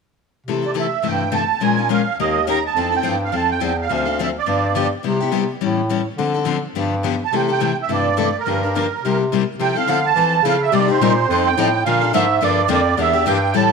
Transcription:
0.46 C3 E3 A3 E4 A4
0.62 A3 E4 A4 D5
0.74 C3 E3 A3 E4 A4
0.80 E5
1.02 G2 C3 E3 A3 E4 A4
1.08 G5
1.32 C3 E3 A3 E4 A4 A5
1.60 A#2 F3 G#3 C#4 F4 A#4 G#5
1.77 C#4 F4 A#4
1.89 F3 G#3 C#4 F4 A#4 F5
2.17 D#2 D#3 A#3 C#4 G4 A#4 D#5
2.47 D#3 A#3 C#4 G4 A#4 A#5
2.66 A5
2.76 F2 F3 C4 E4 A4
2.92 C4 E4 A4 G5
3.03 G2 F3 C4 E4 A4
3.25 F5
3.32 F2 F3 C4 E4 A4
3.37 A5
3.51 G5
3.60 E2 F3 C4 E4 A4
3.82 F5
3.89 D2 D3 F3 C4 D4 A4
4.05 C4 D4 A4
4.19 D3 F3 C4 D4 A4 E5
4.39 D5
4.46 G2 D3 F3 B3 D4 G4
4.75 D3 F3 B3 D4 G4
5.03 C3 G3 B3 E4 G4
5.20 B3 E4 G4
5.32 C3 G3 B3 E4 G4
5.61 A2 E3 G3 C#4 E4 A4
5.89 E3 G3 C#4 E4 A4
6.18 D3 F3 C4 D4 A4
6.34 C4 D4 A4
6.45 D3 F3 C4 D4 A4
6.75 G2 D3 F3 B3 D4 G4
7.03 D3 F3 B3 D4 G4
7.25 A5
7.32 C3 E3 A3 E4 A4 G5
7.48 A3 E4 A4 G5
7.60 C3 E3 A3 E4 A4
7.82 E5
7.88 G2 C3 E3 A3 E4 A4
7.94 D5
8.17 C3 E3 A3 E4 A4
8.40 A#4
8.45 G2 D3 F3 A#3 D4 G4
8.63 A#3 D4 G4
8.75 D3 F3 A#3 D4 G4
9.02 C3 G3 A#3
9.06 E4 G4
9.32 C3 G3 A#3 E4 G4
9.58 C3 F3 C4 E4 A4 G5
9.76 C4 E4 A4 F5
9.87 D3 F3 C4 E4 A4
10.06 A5
10.15 E3 F3 C4 E4 A4
10.42 C#3 F3 C4 E4 A4
10.48 F5
10.62 E5
10.72 C3 G3 A#3 D#4 G4 D5
10.88 A#3 D#4 G4 C5
11.00 A#2 C3 G3 A#3 D#4 G4
11.28 F2 F3 C4 D#4 A4
11.47 G5
11.57 A2 F3 C4 D#4 A4
11.85 A#2 D3 F3 A#3 D4 A4 F5
12.01 A#3 D4 A4
12.13 G#2 D3 F3 A#3 D4 A4 E5
12.41 G2 D3 F3 A#3 D4 A4 D5
12.68 F2 D3 F3 A#3 D4 A4
12.73 D5
12.97 E2 E3 A#3 D4 G4 E5
13.13 A#3 D4 G4
13.26 G2 E3 A#3 D4 G4 G5
13.54 A2 E3 G3 C#4 E4 A4 A5

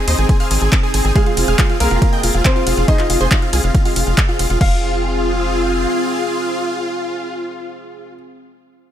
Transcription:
Already playing: C4 D#4 G#4 C5
0.08 D#2 C5 D#5 D#6, open hi-hat, ride
0.18 G#1 G#4 G#5, closed hi-hat
0.29 G#4 G#5, kick, closed hi-hat, ride
0.40 G#4 F5 F6, open hi-hat
0.51 G#1 G#4 G#5, open hi-hat, ride
0.62 G#1 G#4 G#5, closed hi-hat
0.72 kick, clap, closed hi-hat, ride
0.83 G#4 G#5
0.94 G#1 G#4 G#5, open hi-hat, ride
1.05 G#1 G#4 G#5
1.16 G#3 F4 G#4 F5 F6, kick, closed hi-hat, ride
1.26 F4 F5, closed hi-hat
1.37 F1 F4 F5, open hi-hat, ride
1.48 F1 G#4 F5 F6, closed hi-hat
1.59 F4 F5, kick, clap, closed hi-hat, ride
1.70 F4 F5, closed hi-hat
1.80 C2 A#3 G#4 A#4 F5 F6, open hi-hat, ride
1.91 F1 F4 F5, closed hi-hat
2.02 F4 F5, kick, closed hi-hat, ride
2.13 D#5 G5 G6, closed hi-hat
2.23 F1 F4 F5, open hi-hat, ride
2.34 F1 F4 F5, closed hi-hat
2.45 C4 C5, kick, clap, closed hi-hat, ride
2.56 F4 F5
2.67 F1 F4 F5, open hi-hat, ride
2.77 F1 F4 F5, closed hi-hat
2.88 D#4 G#4 C5 D#5 C6, kick, closed hi-hat, ride
2.99 F4 F5, clap, closed hi-hat
3.10 F1 F4 F5, open hi-hat, ride
3.21 F1 G#4 C5 C6
3.31 F4 F5, kick, clap, closed hi-hat, ride
3.42 F4 F5, closed hi-hat
3.53 C2 F4 G#4 G#5, open hi-hat, ride
3.64 F1 F4 F5, closed hi-hat
3.75 F4 F5, kick, closed hi-hat, ride
3.85 G#3 F4 F5, open hi-hat
3.96 F1 F4 F5, open hi-hat, ride
4.07 F1 F4 F5, closed hi-hat
4.18 kick, clap, closed hi-hat, ride
4.29 F4 F5
4.39 F1 F4 F5, open hi-hat, ride
4.50 F1 F4 F5, closed hi-hat
4.61 F1 C4 F4 G#4 F5, kick, crash

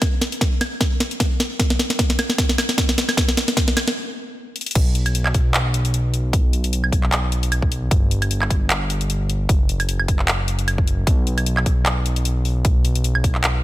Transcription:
0.02 kick, snare, closed hi-hat
0.21 snare, closed hi-hat
0.32 closed hi-hat
0.41 kick, snare, closed hi-hat
0.61 snare, closed hi-hat, high woodblock
0.81 kick, snare, closed hi-hat
1.00 snare, closed hi-hat
1.11 closed hi-hat
1.20 kick, snare, closed hi-hat
1.40 snare, closed hi-hat
1.60 kick, snare, closed hi-hat
1.70 snare
1.79 snare, closed hi-hat
1.90 snare, closed hi-hat
1.99 kick, snare, closed hi-hat
2.10 snare
2.19 snare, closed hi-hat, high woodblock
2.30 snare
2.38 kick, snare, closed hi-hat
2.49 snare
2.58 snare, closed hi-hat, high woodblock
2.69 snare, closed hi-hat
2.78 kick, snare, closed hi-hat
2.89 snare
2.98 snare, closed hi-hat
3.09 snare, high woodblock
3.17 kick, snare, closed hi-hat
3.28 snare
3.37 snare, closed hi-hat
3.48 snare, closed hi-hat
3.57 kick, snare, closed hi-hat
3.68 snare
3.77 snare, closed hi-hat, high woodblock
3.88 snare
4.56 closed hi-hat
4.61 closed hi-hat
4.66 closed hi-hat
4.71 closed hi-hat
4.75 B1, kick, closed hi-hat, crash
4.95 closed hi-hat
5.06 closed hi-hat, high woodblock
5.15 closed hi-hat
5.26 clap, high woodblock
5.34 kick, closed hi-hat
5.54 clap, closed hi-hat
5.74 closed hi-hat
5.85 closed hi-hat
5.94 closed hi-hat
6.14 closed hi-hat
6.33 kick, closed hi-hat
6.53 closed hi-hat
6.64 closed hi-hat
6.73 closed hi-hat
6.84 high woodblock
6.92 kick, closed hi-hat
7.04 clap
7.12 clap, closed hi-hat
7.32 closed hi-hat
7.43 closed hi-hat
7.52 closed hi-hat, high woodblock
7.62 kick
7.72 closed hi-hat
7.91 G1, kick, closed hi-hat
8.11 closed hi-hat
8.22 closed hi-hat, high woodblock
8.31 closed hi-hat
8.42 clap, high woodblock
8.50 kick, closed hi-hat
8.70 clap, closed hi-hat
8.90 closed hi-hat
9.01 closed hi-hat
9.10 closed hi-hat
9.30 closed hi-hat
9.49 F#1, kick, closed hi-hat
9.69 closed hi-hat
9.80 closed hi-hat, high woodblock
9.89 closed hi-hat
10.00 high woodblock
10.08 kick, closed hi-hat
10.19 clap
10.28 clap, closed hi-hat
10.48 closed hi-hat
10.59 closed hi-hat
10.68 closed hi-hat, high woodblock
10.78 kick
10.88 closed hi-hat
11.07 B1, kick, closed hi-hat
11.27 closed hi-hat
11.38 closed hi-hat, high woodblock
11.46 closed hi-hat
11.57 clap, high woodblock
11.66 kick, closed hi-hat
11.86 clap, closed hi-hat
12.06 closed hi-hat
12.16 closed hi-hat
12.25 closed hi-hat
12.45 open hi-hat
12.65 kick, closed hi-hat
12.85 closed hi-hat
12.95 closed hi-hat
13.04 closed hi-hat
13.15 high woodblock
13.24 kick, closed hi-hat
13.35 clap
13.44 clap, closed hi-hat

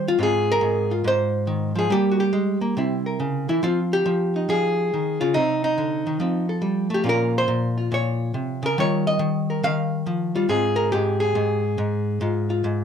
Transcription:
Already playing: D#3 G3
0.08 F4
0.19 G#2 C4 F4
0.23 G#4
0.52 A#4
0.61 G#2
0.91 F4
1.04 G#2 C5
1.47 D#3
1.75 F3 G#4
1.90 G3 A#3 G4
2.11 F#4
2.20 G4
2.33 G#3
2.61 A#3
2.77 C3 C4 E4
3.06 A#4
3.20 C#3
3.49 E3 E4
3.63 F3 C4 F4
3.93 G4
4.06 F3
4.36 D#4
4.49 F3 G#4
4.94 D#3
5.21 C#3 F4
5.34 C3 C4 D#4
5.64 D#4
5.78 D3
6.07 D#3
6.20 F3 C4
6.49 A4
6.62 G3
6.90 A3
6.94 G4
7.04 A#2 A#3 C#4 F4
7.09 A#4
7.38 C5
7.48 A#2
7.78 F4
7.92 A#2 C#5
8.34 C3
8.63 C#3 A#4
8.78 D#3 G3 F4 A#4 C#5
9.07 D#5
9.19 D#3
9.50 A#4
9.63 D#3 F5
10.06 F3
10.35 G3 F4
10.49 G#2 C4 F4 G#4
10.76 A#4
10.92 G#2 G4
11.20 G#4
11.35 G#2
11.78 G#2
12.21 G#2 F4
12.50 F4
12.64 G#2

